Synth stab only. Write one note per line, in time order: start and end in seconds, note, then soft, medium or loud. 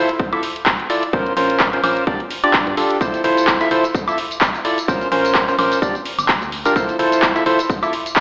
0.33 0.43 E4 medium
0.33 0.43 F4 medium
0.33 0.43 A4 medium
0.33 0.43 E5 medium
0.90 1.03 E4 medium
0.90 1.03 F4 medium
0.90 1.03 A4 medium
0.90 1.03 D5 medium
1.13 1.33 C#4 medium
1.13 1.33 F4 medium
1.13 1.33 A#4 medium
1.13 1.33 C5 loud
1.37 1.70 C#4 medium
1.37 1.70 F4 medium
1.37 1.70 A#4 medium
1.37 1.70 C5 loud
1.73 1.81 C#4 medium
1.73 1.81 F4 medium
1.73 1.81 A#4 medium
1.73 1.81 C5 medium
1.84 2.05 C#4 medium
1.84 2.05 F4 medium
1.84 2.05 A#4 medium
1.84 2.05 C5 medium
2.07 2.21 D4 medium
2.07 2.21 F4 medium
2.07 2.21 G4 medium
2.07 2.21 D5 medium
2.44 2.75 D4 medium
2.44 2.75 F4 medium
2.44 2.75 G4 medium
2.44 2.75 D5 medium
2.77 2.98 D4 medium
2.77 2.98 F4 medium
2.77 2.98 G4 medium
2.77 2.98 A4 medium
3.01 3.22 E4 medium
3.01 3.22 F4 medium
3.01 3.22 A4 medium
3.01 3.22 C5 medium
3.24 3.58 E4 medium
3.24 3.58 F4 medium
3.24 3.58 A4 medium
3.24 3.58 C5 loud
3.61 3.69 E4 loud
3.61 3.69 F4 medium
3.61 3.69 A4 medium
3.61 3.69 E5 loud
3.71 3.85 E4 medium
3.71 3.85 F4 medium
3.71 3.85 A4 medium
3.71 3.85 C5 loud
4.08 4.19 E4 medium
4.08 4.19 F4 medium
4.08 4.19 A4 medium
4.08 4.19 E5 medium
4.65 4.78 E4 medium
4.65 4.78 F4 medium
4.65 4.78 A4 medium
4.65 4.78 D5 medium
4.88 5.08 C#4 medium
4.88 5.08 F4 medium
4.88 5.08 A#4 medium
4.88 5.08 C5 loud
5.12 5.45 C#4 medium
5.12 5.45 F4 medium
5.12 5.45 A#4 medium
5.12 5.45 C5 loud
5.48 5.56 C#4 medium
5.48 5.56 F4 medium
5.48 5.56 A#4 medium
5.48 5.56 C5 medium
5.59 5.80 C#4 medium
5.59 5.80 F4 medium
5.59 5.80 A#4 medium
5.59 5.80 C5 medium
5.82 5.96 D4 medium
5.82 5.96 F4 medium
5.82 5.96 G4 medium
5.82 5.96 D5 medium
6.65 6.74 D4 medium
6.65 6.74 F4 medium
6.65 6.74 G4 medium
6.65 6.74 A#4 loud
6.76 6.97 E4 medium
6.76 6.97 F4 medium
6.76 6.97 A4 medium
6.76 6.97 C5 medium
6.99 7.33 E4 medium
6.99 7.33 F4 medium
6.99 7.33 A4 medium
6.99 7.33 C5 loud
7.36 7.44 E4 loud
7.36 7.44 F4 medium
7.36 7.44 A4 medium
7.36 7.44 E5 loud
7.46 7.60 E4 loud
7.46 7.60 F4 medium
7.46 7.60 A4 medium
7.46 7.60 C5 loud
7.83 7.94 E4 medium
7.83 7.93 F4 medium
7.83 7.94 A4 medium
7.83 7.93 E5 medium